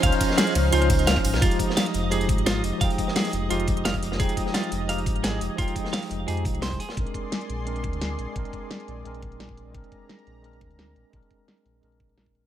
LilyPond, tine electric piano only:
\new Staff \with { instrumentName = "Tine electric piano" } { \time 4/4 \key bes \dorian \tempo 4 = 173 <f des' ees' c''>2 <f des' ees' c''>8 r4. | <f aes ees' g'>2 <f aes ees' g'>8 r4. | <f aes ees' g''>2 <f aes ees' g'>8 r4. | <f aes ees' g''>2 <f aes ees' g'>8 r4. |
<f aes ees' g''>2 <f aes ees' g'>8 r4. | <aes c' d' bes'>2 <aes c' d' bes'>8 r4. | <aes c' d' bes'>2 <aes c' d' bes'>8 r4. | <aes c' d' bes'>2 <aes c' d' bes'>8 r4. |
<aes c' d' bes'>2 <aes c' d' bes'>8 r4. | }